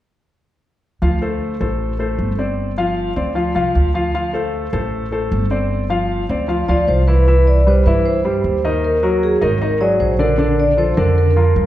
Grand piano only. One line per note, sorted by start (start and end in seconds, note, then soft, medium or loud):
1.02 1.18 F3 medium
1.02 1.18 F4 medium
1.02 1.18 F5 medium
1.21 1.53 A3 medium
1.21 1.54 A4 medium
1.21 1.54 C5 medium
1.60 1.92 A3 medium
1.60 1.92 A4 medium
1.60 1.93 C5 medium
1.99 2.31 A3 medium
1.99 2.32 A4 medium
1.99 2.32 C5 medium
2.38 2.70 C4 medium
2.38 2.71 C5 medium
2.38 2.71 D5 medium
2.78 3.10 F3 medium
2.78 3.10 F4 medium
2.78 3.10 F5 medium
3.16 3.32 C4 medium
3.16 3.33 C5 medium
3.16 3.33 D5 medium
3.35 3.52 F3 medium
3.35 3.52 F4 medium
3.35 3.52 F5 medium
3.55 3.87 F3 medium
3.55 3.88 F4 medium
3.55 3.88 F5 medium
3.94 4.11 F3 medium
3.94 4.11 F4 medium
3.94 4.11 F5 medium
4.15 4.31 F3 medium
4.15 4.31 F4 medium
4.15 4.31 F5 medium
4.33 4.66 A3 medium
4.33 4.66 A4 medium
4.33 4.66 C5 medium
4.73 5.05 A3 medium
4.73 5.05 A4 medium
4.73 5.05 C5 medium
5.12 5.44 A3 medium
5.12 5.44 A4 medium
5.12 5.45 C5 medium
5.51 5.83 C4 medium
5.51 5.83 C5 medium
5.51 5.83 D5 medium
5.90 6.22 F3 medium
5.90 6.22 F4 medium
5.90 6.22 F5 medium
6.30 6.46 C4 medium
6.30 6.46 C5 medium
6.30 6.46 D5 medium
6.48 6.64 F3 medium
6.48 6.65 F4 medium
6.48 6.65 F5 medium
6.69 7.01 F3 medium
6.69 7.01 F4 medium
6.69 7.01 F5 medium
7.08 7.24 E3 medium
7.08 7.24 E4 medium
7.08 7.24 E5 medium
7.27 7.59 E3 medium
7.27 7.59 E4 medium
7.27 7.60 E5 medium
7.67 7.82 G3 medium
7.67 7.83 G4 medium
7.67 7.83 B4 medium
7.87 8.18 E3 medium
7.87 8.18 E4 medium
7.87 8.19 E5 medium
8.25 8.57 G3 medium
8.25 8.57 G4 medium
8.25 8.57 C5 medium
8.64 8.96 D#3 medium
8.64 8.96 D#4 medium
8.64 8.96 D#5 medium
9.03 9.35 F#3 medium
9.03 9.35 F#4 medium
9.03 9.35 A#4 medium
9.41 9.57 D#3 medium
9.41 9.57 D#4 medium
9.41 9.58 D#5 medium
9.61 9.77 D#3 medium
9.61 9.77 D#4 medium
9.61 9.77 D#5 medium
9.81 10.12 F#3 medium
9.81 10.13 F#4 medium
9.81 10.13 G#4 medium
10.19 10.35 D3 medium
10.19 10.35 D4 medium
10.19 10.35 D5 medium
10.38 10.70 D3 medium
10.38 10.71 D4 medium
10.38 10.71 D5 medium
10.77 10.93 F3 medium
10.77 10.94 F4 medium
10.77 10.94 A4 medium
10.97 11.29 D3 medium
10.97 11.29 D4 medium
10.97 11.29 D5 medium
11.36 11.66 F3 medium
11.36 11.66 F4 medium
11.36 11.66 A#4 medium